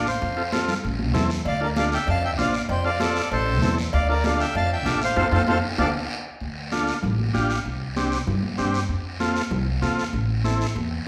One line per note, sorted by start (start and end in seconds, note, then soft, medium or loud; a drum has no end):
0.00 0.16 A1 medium
0.07 0.50 C5 medium
0.07 0.50 F5 medium
0.07 short guiro medium
0.22 0.71 F2 loud
0.22 high conga soft
0.22 long guiro medium
0.37 0.42 C4 medium
0.37 0.42 F4 medium
0.37 0.43 A4 medium
0.52 0.74 C4 medium
0.52 0.74 F4 medium
0.52 0.74 A4 loud
0.52 high conga loud
0.52 short guiro medium
0.68 low conga medium
0.68 short guiro medium
0.83 1.14 A1 loud
0.83 high conga soft
0.83 long guiro medium
0.99 high conga medium
1.14 1.39 E2 medium
1.14 1.30 C4 medium
1.14 1.30 E4 medium
1.14 1.31 A4 loud
1.14 high conga medium
1.14 low conga medium
1.14 short guiro medium
1.30 short guiro medium
1.45 1.95 D2 loud
1.45 1.61 D5 medium
1.45 1.60 F5 loud
1.45 cowbell loud
1.45 high conga soft
1.45 long guiro medium
1.60 1.66 D4 medium
1.60 1.66 F4 medium
1.60 1.67 A4 medium
1.60 1.70 A#4 medium
1.60 1.69 D5 medium
1.76 1.98 D4 medium
1.76 1.98 F4 medium
1.76 1.98 A4 medium
1.76 1.85 D5 medium
1.76 1.84 F5 loud
1.76 cowbell medium
1.76 high conga loud
1.76 short guiro medium
1.92 2.08 E5 medium
1.92 2.09 G5 loud
1.92 short guiro medium
2.07 2.39 F2 loud
2.07 2.23 F5 medium
2.07 2.24 A5 loud
2.07 cowbell medium
2.07 high conga soft
2.07 long guiro medium
2.24 2.32 E5 medium
2.24 2.31 G5 loud
2.38 2.63 A1 medium
2.38 2.54 D4 medium
2.38 2.55 F4 medium
2.38 2.55 C5 medium
2.38 2.54 D5 medium
2.38 2.53 F5 loud
2.38 cowbell medium
2.38 high conga medium
2.38 short guiro medium
2.54 2.62 D5 medium
2.54 2.61 F5 medium
2.54 short guiro medium
2.69 3.19 F2 loud
2.69 2.85 C5 loud
2.69 2.84 G5 loud
2.69 cowbell loud
2.69 high conga soft
2.69 long guiro medium
2.84 2.90 C4 medium
2.84 2.90 F4 medium
2.84 2.90 A4 medium
2.84 2.99 D5 medium
2.84 3.01 F5 loud
3.00 3.22 C4 medium
3.00 3.22 F4 medium
3.00 3.22 A4 medium
3.00 3.30 A4 medium
3.00 3.29 D5 loud
3.00 cowbell medium
3.00 high conga loud
3.00 short guiro medium
3.16 short guiro medium
3.31 3.62 A1 loud
3.31 3.75 A4 medium
3.31 3.75 C5 loud
3.31 cowbell medium
3.31 high conga soft
3.31 long guiro medium
3.62 3.87 E2 loud
3.62 3.78 C4 medium
3.62 3.78 E4 medium
3.62 3.78 A4 medium
3.62 cowbell medium
3.62 high conga medium
3.62 low conga medium
3.62 short guiro medium
3.78 short guiro medium
3.93 4.43 D2 loud
3.93 4.08 D5 medium
3.93 4.08 F5 loud
3.93 cowbell loud
3.93 high conga soft
3.93 long guiro medium
4.09 4.14 D4 medium
4.09 4.14 F4 medium
4.09 4.15 A4 medium
4.09 4.24 A#4 medium
4.09 4.25 D5 medium
4.24 4.46 D4 medium
4.24 4.46 F4 medium
4.24 4.46 A4 medium
4.24 4.40 D5 medium
4.24 4.41 F5 loud
4.24 cowbell medium
4.24 high conga loud
4.24 short guiro medium
4.40 4.55 E5 medium
4.40 4.56 G5 loud
4.40 short guiro medium
4.55 4.85 F2 loud
4.55 4.70 F5 medium
4.55 4.72 A5 loud
4.55 cowbell loud
4.55 high conga soft
4.55 long guiro medium
4.73 5.01 E5 medium
4.73 5.00 G5 loud
4.85 5.10 A1 loud
4.85 5.02 D4 medium
4.85 5.02 F4 medium
4.85 5.02 A4 medium
4.85 cowbell medium
4.85 high conga medium
4.85 low timbale medium
4.85 short guiro medium
5.02 5.16 C5 medium
5.02 5.16 F5 loud
5.02 short guiro medium
5.16 5.28 F2 loud
5.16 5.27 C4 loud
5.16 5.27 F4 loud
5.16 5.27 A4 loud
5.16 5.27 C5 loud
5.16 5.27 F5 loud
5.16 high conga loud
5.16 high timbale loud
5.16 long guiro loud
5.31 5.43 F2 loud
5.31 5.42 C4 loud
5.31 5.42 F4 loud
5.31 5.42 A4 loud
5.31 5.43 A4 loud
5.31 5.43 C5 loud
5.31 5.43 F5 loud
5.31 high conga loud
5.31 high timbale loud
5.31 long guiro loud
5.47 5.59 F2 loud
5.47 5.58 C4 loud
5.47 5.58 F4 loud
5.47 5.58 A4 loud
5.47 5.59 A4 loud
5.47 5.59 C5 loud
5.47 5.59 F5 loud
5.47 high conga loud
5.47 high timbale loud
5.47 long guiro loud
5.78 5.90 D2 loud
5.78 5.88 D4 loud
5.78 5.88 F4 medium
5.78 5.89 A4 loud
5.78 5.89 D5 loud
5.78 5.89 F5 loud
5.78 high conga loud
5.78 high timbale loud
5.78 long guiro loud
6.40 6.91 D2 medium
6.40 long guiro medium
6.72 6.94 D4 medium
6.72 6.94 F4 medium
6.72 6.94 A4 loud
6.72 high conga medium
6.72 short guiro medium
6.87 short guiro medium
7.03 7.28 A1 loud
7.03 low conga medium
7.03 long guiro medium
7.19 high conga medium
7.33 7.59 A1 medium
7.33 7.56 D4 medium
7.33 7.56 F4 medium
7.33 7.56 G4 loud
7.33 high conga medium
7.33 short guiro medium
7.50 short guiro medium
7.65 8.15 C2 medium
7.65 long guiro medium
7.96 8.18 C4 medium
7.96 8.18 D4 medium
7.96 8.18 G4 medium
7.96 high conga medium
7.96 short guiro medium
8.12 short guiro medium
8.27 8.52 G2 loud
8.27 low conga medium
8.27 long guiro medium
8.43 high conga medium
8.58 8.84 G2 medium
8.58 8.80 C4 medium
8.58 8.80 D4 medium
8.58 8.80 G4 loud
8.58 high conga medium
8.58 short guiro medium
8.74 short guiro medium
8.89 9.39 F2 medium
8.89 long guiro medium
9.20 9.42 C4 medium
9.20 9.42 F4 medium
9.20 9.42 A4 loud
9.20 high conga medium
9.20 short guiro medium
9.36 short guiro medium
9.51 9.76 C2 loud
9.51 low conga medium
9.51 long guiro medium
9.82 10.07 E2 medium
9.82 10.04 C4 medium
9.82 10.04 F4 medium
9.82 10.05 A4 medium
9.82 high conga medium
9.82 short guiro medium
9.99 short guiro medium
10.13 10.63 A1 loud
10.13 long guiro medium
10.44 10.66 C4 medium
10.44 10.67 E4 medium
10.44 10.67 A4 medium
10.44 high conga medium
10.44 short guiro medium
10.61 short guiro medium
10.75 11.01 E2 loud
10.75 high conga medium
10.75 long guiro medium